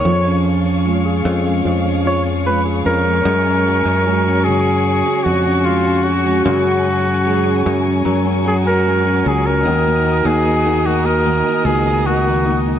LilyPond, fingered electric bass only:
\new Staff \with { instrumentName = "Fingered electric bass" } { \clef bass \time 4/4 \key fis \major \tempo 4 = 75 eis,4. eis,8 eis,4. eis,8 | fis,8. fis,4. r16 eis,4. | fis,4. fis,8 fis,4. cis,8 | dis,8. dis,4. r16 cis,4. | }